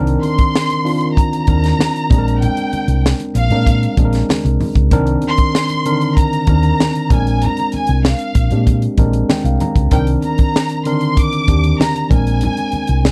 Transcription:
Already playing: C2 D#3 C4 D4 A#4
0.07 closed hi-hat
0.23 C6, closed hi-hat, high conga
0.38 kick, closed hi-hat
0.56 snare
0.70 closed hi-hat, muted conga
0.84 D#3 C4 D4 F4, open hi-hat
1.01 closed hi-hat
1.15 A#5, kick, closed hi-hat
1.33 closed hi-hat, muted conga
1.47 D#2 D#3 C4 D4 A#4, kick, closed hi-hat, high conga
1.64 snare, closed hi-hat
1.79 snare, high conga
1.96 closed hi-hat
2.10 A#1 G#3 C4 D4 G#4, kick, closed hi-hat, high conga, low conga
2.18 A#4
2.28 closed hi-hat
2.41 G5, closed hi-hat, low conga
2.57 closed hi-hat, muted conga
2.72 muted fingered electric bass stroke, closed hi-hat, high conga
2.88 C2, closed hi-hat
3.06 snare
3.20 closed hi-hat, muted conga
3.35 A#1 F5, closed hi-hat
3.50 A#2 G#3 C4 D4 A#4, closed hi-hat
3.66 kick, closed hi-hat, muted conga
3.83 closed hi-hat
3.97 A#1 G#3 C4 D4 G#4, kick, closed hi-hat, high conga
4.05 A#4
4.13 snare, closed hi-hat
4.29 muted fingered electric bass stroke, snare, muted conga, high conga
4.45 C2, closed hi-hat, muted conga
4.60 open hi-hat, high conga, low conga
4.75 C#2, kick, closed hi-hat
4.91 C2 D#3 C4 D4 A#4, kick, closed hi-hat, muted conga, low conga
5.07 closed hi-hat
5.22 closed hi-hat, high conga
5.27 C6
5.37 kick, closed hi-hat
5.55 snare
5.69 closed hi-hat, muted conga
5.85 D3 C4 D4 A#4, closed hi-hat
5.92 D#3
6.01 closed hi-hat
6.17 A#5, kick, closed hi-hat
6.33 closed hi-hat
6.47 D#2 D#3 C4 D4 A#4, kick, closed hi-hat, high conga
6.63 closed hi-hat
6.80 snare, muted conga, high conga
6.95 closed hi-hat
7.10 A#1 G#3 C4 D4 A#4 G#5, kick, closed hi-hat, high conga, low conga
7.27 closed hi-hat
7.42 A#5, closed hi-hat, muted conga, low conga
7.57 closed hi-hat, muted conga
7.72 G#5, muted fingered electric bass stroke, closed hi-hat, high conga
7.87 C2, closed hi-hat
8.05 F5, snare, muted conga
8.19 closed hi-hat
8.35 A#1, kick, closed hi-hat
8.51 A#2 G#3 C4 D4 G4, closed hi-hat
8.67 kick, closed hi-hat, muted conga
8.82 closed hi-hat
8.98 A#1 G#3 C4 D4 A#4, kick, closed hi-hat, high conga
9.13 closed hi-hat
9.29 G5, muted fingered electric bass stroke, snare, muted conga, high conga
9.44 C2 F5, closed hi-hat
9.60 A#5, closed hi-hat, high conga, low conga
9.76 C#2, kick, closed hi-hat
9.91 C2 D#3 C4 D4 A#4 G5, kick, closed hi-hat, muted conga, low conga
10.07 closed hi-hat
10.22 A#5, closed hi-hat, high conga
10.38 kick, closed hi-hat
10.56 snare
10.69 closed hi-hat
10.85 D3 C4 D4 A#4 C6, closed hi-hat
10.92 D#3
11.01 closed hi-hat
11.17 D6, kick, closed hi-hat
11.33 closed hi-hat, muted conga
11.48 D#2 D#3 C4 D4 G4, kick, closed hi-hat, high conga
11.64 closed hi-hat
11.80 A#5, snare, muted conga, high conga
11.96 closed hi-hat, muted conga
12.10 A#1 G#3 C4 D4 A#4 G#5, kick, closed hi-hat, high conga, low conga
12.27 closed hi-hat
12.41 closed hi-hat, muted conga, low conga
12.57 closed hi-hat, muted conga
12.72 muted fingered electric bass stroke, closed hi-hat, high conga
12.87 C2, closed hi-hat
13.05 snare, muted conga

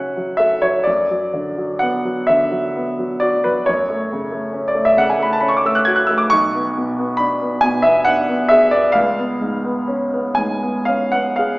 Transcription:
Already playing: C#3 F#3 C#4 E5 F#5 G#5 A5
0.17 F#3
0.37 A4 E5
0.62 F#3 C#5
0.84 F#2 D5
1.11 F#3
1.33 D3
1.58 F#3
1.79 B3 F#5
2.05 F#3
2.27 D3 E5
2.51 F#3
2.75 B3
2.99 F#3
3.20 F#4 D5
3.44 F#3 B4
3.66 F#2 C#5
3.90 A3
4.12 C#3
4.32 A3
4.53 C#4
4.68 D5
4.75 A3
4.85 E5
4.97 C#3 F#5
5.10 G#5
5.19 A3 B5
5.33 A5
5.41 C#4 B5
5.49 C#6
5.57 D6
5.65 A3 E6
5.75 F#6
5.85 F#4 G#6
5.96 F#6
6.07 A3 E6
6.18 D6
6.30 B1 C#6
6.55 B3
6.77 B2
6.99 B3
7.17 D4 B5
7.41 B3
7.61 B2 G#5
7.82 B3 E5
8.05 D4 F#5
8.29 B3
8.49 G#4 E5
8.71 B3 D5
8.92 C#2 F5
9.19 B3
9.41 G#2
9.65 B3
9.88 C#4
10.13 B3
10.35 G#2 G#5
10.63 B3
10.85 C#4 F5
11.12 B3 F#5
11.36 G#4 F5

